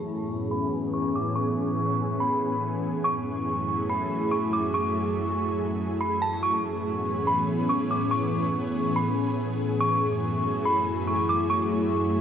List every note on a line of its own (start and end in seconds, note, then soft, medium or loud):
0.00 3.01 A2 medium
0.00 3.01 E3 medium
0.00 3.01 B3 medium
0.00 3.01 C#4 medium
0.00 3.01 G#4 medium
0.00 0.47 C#6 medium
0.51 0.91 B5 medium
0.94 1.14 C#6 medium
1.15 1.35 D6 medium
1.35 2.16 C#6 loud
2.20 2.60 B5 medium
3.04 6.39 F#2 medium
3.04 6.39 F#3 medium
3.04 6.39 A3 medium
3.04 6.39 E4 medium
3.04 6.39 G#4 medium
3.04 3.85 C#6 loud
3.89 4.29 B5 medium
4.31 4.51 C#6 medium
4.53 4.73 D6 medium
4.74 5.54 C#6 loud
6.01 6.21 B5 medium
6.22 6.42 A5 medium
6.43 9.78 A2 medium
6.43 9.78 E3 medium
6.43 9.78 B3 medium
6.43 9.78 C#4 medium
6.43 12.21 G#4 medium
6.43 7.23 C#6 loud
7.27 7.67 B5 medium
7.69 7.89 C#6 medium
7.91 8.11 D6 medium
8.11 8.92 C#6 loud
8.96 9.36 B5 medium
9.80 12.21 F#2 medium
9.80 12.21 F#3 medium
9.80 12.21 A3 medium
9.80 12.21 E4 medium
9.80 10.61 C#6 loud
10.65 11.05 B5 medium
11.07 11.28 C#6 medium
11.29 11.49 D6 medium
11.50 12.21 C#6 loud